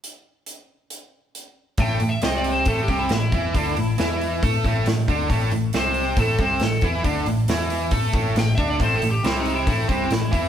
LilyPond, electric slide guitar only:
\new Staff \with { instrumentName = "Electric slide guitar" } { \time 4/4 \key a \minor \tempo 4 = 137 r1 | \tuplet 3/2 { g''4 e''8 dis''8 d''8 c''8 a'8 g'8 e'8 } e'4~ | e'2 r2 | r4 c''4 a'8 c''8 a'8 e'8 |
r2. \tuplet 3/2 { g''8 e''8 d''8 } | \tuplet 3/2 { c''8 a'8 g'8 e'8 dis'8 e'8~ } e'2 | }